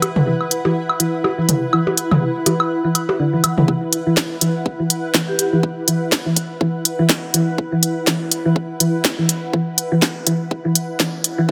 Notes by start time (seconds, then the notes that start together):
Already playing: E4 B4 F#5
0.02 closed hi-hat, percussion blips, high woodblock
0.16 mid tom
0.27 E3
0.41 high woodblock
0.51 closed hi-hat
0.65 E3, percussion blips
0.89 high woodblock
1.00 E3, closed hi-hat
1.24 percussion blips, high woodblock
1.38 E3
1.49 closed hi-hat, mid tom
1.73 E3, high woodblock
1.87 percussion blips
1.97 closed hi-hat
2.11 E3, mid tom, high woodblock
2.46 E3, closed hi-hat, percussion blips
2.60 high woodblock
2.85 E3
2.95 closed hi-hat, high woodblock
3.09 percussion blips
3.19 D3
3.33 E3
3.44 E3, closed hi-hat, high woodblock
3.58 E3, mid tom
3.68 E3, kick
3.93 closed hi-hat
4.07 E3
4.17 kick, snare
4.41 E3, closed hi-hat
4.66 kick
4.80 E3
4.90 closed hi-hat
5.14 E3, kick, snare
5.28 G4
5.39 G4, closed hi-hat
5.53 E3
5.63 kick
5.88 E3, closed hi-hat
6.12 kick, snare
6.26 E3
6.36 kick, closed hi-hat
6.61 E3, kick
6.85 closed hi-hat
6.99 E3
7.10 kick, snare
7.34 E3, closed hi-hat
7.58 kick
7.72 E3
7.83 closed hi-hat
8.07 E3, kick, snare
8.31 closed hi-hat
8.45 E3
8.56 kick
8.80 E3, closed hi-hat
9.05 kick, snare
9.19 E3
9.29 closed hi-hat
9.53 E3, kick
9.78 closed hi-hat
9.92 E3
10.02 kick, snare
10.27 E3, kick, closed hi-hat
10.51 kick
10.65 E3
10.75 closed hi-hat
11.00 E3, kick, snare
11.24 closed hi-hat
11.38 E3